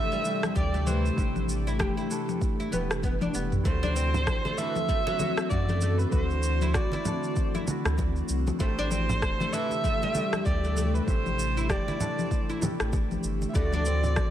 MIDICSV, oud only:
0, 0, Header, 1, 2, 480
1, 0, Start_track
1, 0, Tempo, 618557
1, 917, Time_signature, 4, 2, 24, 8
1, 11099, End_track
2, 0, Start_track
2, 0, Title_t, "Oud"
2, 0, Program_c, 0, 24
2, 0, Note_on_c, 0, 57, 88
2, 81, Note_off_c, 0, 57, 0
2, 92, Note_on_c, 0, 55, 74
2, 424, Note_off_c, 0, 55, 0
2, 432, Note_on_c, 0, 67, 85
2, 568, Note_off_c, 0, 67, 0
2, 574, Note_on_c, 0, 57, 79
2, 665, Note_off_c, 0, 57, 0
2, 673, Note_on_c, 0, 52, 78
2, 809, Note_off_c, 0, 52, 0
2, 1297, Note_on_c, 0, 64, 75
2, 1387, Note_off_c, 0, 64, 0
2, 1392, Note_on_c, 0, 67, 80
2, 1528, Note_off_c, 0, 67, 0
2, 1531, Note_on_c, 0, 64, 77
2, 2000, Note_off_c, 0, 64, 0
2, 2016, Note_on_c, 0, 64, 77
2, 2111, Note_off_c, 0, 64, 0
2, 2112, Note_on_c, 0, 59, 75
2, 2248, Note_off_c, 0, 59, 0
2, 2355, Note_on_c, 0, 59, 78
2, 2436, Note_off_c, 0, 59, 0
2, 2497, Note_on_c, 0, 62, 75
2, 2592, Note_off_c, 0, 62, 0
2, 2596, Note_on_c, 0, 59, 77
2, 2730, Note_off_c, 0, 59, 0
2, 2833, Note_on_c, 0, 57, 95
2, 2962, Note_off_c, 0, 57, 0
2, 2971, Note_on_c, 0, 62, 100
2, 3064, Note_off_c, 0, 62, 0
2, 3071, Note_on_c, 0, 60, 78
2, 3441, Note_off_c, 0, 60, 0
2, 3453, Note_on_c, 0, 57, 72
2, 3545, Note_off_c, 0, 57, 0
2, 3555, Note_on_c, 0, 52, 68
2, 3689, Note_off_c, 0, 52, 0
2, 3796, Note_on_c, 0, 57, 83
2, 3923, Note_off_c, 0, 57, 0
2, 3933, Note_on_c, 0, 54, 77
2, 4265, Note_off_c, 0, 54, 0
2, 4277, Note_on_c, 0, 66, 80
2, 4410, Note_off_c, 0, 66, 0
2, 4418, Note_on_c, 0, 57, 75
2, 4507, Note_off_c, 0, 57, 0
2, 4517, Note_on_c, 0, 57, 78
2, 4651, Note_off_c, 0, 57, 0
2, 5137, Note_on_c, 0, 64, 75
2, 5227, Note_off_c, 0, 64, 0
2, 5237, Note_on_c, 0, 66, 83
2, 5370, Note_off_c, 0, 66, 0
2, 5379, Note_on_c, 0, 64, 79
2, 5844, Note_off_c, 0, 64, 0
2, 5857, Note_on_c, 0, 64, 78
2, 5952, Note_off_c, 0, 64, 0
2, 6674, Note_on_c, 0, 57, 102
2, 6802, Note_off_c, 0, 57, 0
2, 6818, Note_on_c, 0, 62, 103
2, 6907, Note_off_c, 0, 62, 0
2, 6919, Note_on_c, 0, 60, 76
2, 7285, Note_off_c, 0, 60, 0
2, 7303, Note_on_c, 0, 57, 74
2, 7390, Note_off_c, 0, 57, 0
2, 7400, Note_on_c, 0, 52, 76
2, 7532, Note_off_c, 0, 52, 0
2, 7642, Note_on_c, 0, 57, 84
2, 7766, Note_off_c, 0, 57, 0
2, 7784, Note_on_c, 0, 55, 71
2, 8110, Note_off_c, 0, 55, 0
2, 8123, Note_on_c, 0, 67, 84
2, 8254, Note_off_c, 0, 67, 0
2, 8262, Note_on_c, 0, 57, 75
2, 8349, Note_off_c, 0, 57, 0
2, 8362, Note_on_c, 0, 57, 76
2, 8493, Note_off_c, 0, 57, 0
2, 8980, Note_on_c, 0, 64, 73
2, 9068, Note_off_c, 0, 64, 0
2, 9078, Note_on_c, 0, 67, 80
2, 9211, Note_off_c, 0, 67, 0
2, 9220, Note_on_c, 0, 64, 77
2, 9685, Note_off_c, 0, 64, 0
2, 9697, Note_on_c, 0, 64, 74
2, 9792, Note_off_c, 0, 64, 0
2, 10516, Note_on_c, 0, 57, 104
2, 10643, Note_off_c, 0, 57, 0
2, 10658, Note_on_c, 0, 62, 108
2, 10748, Note_off_c, 0, 62, 0
2, 10758, Note_on_c, 0, 60, 77
2, 11099, Note_off_c, 0, 60, 0
2, 11099, End_track
0, 0, End_of_file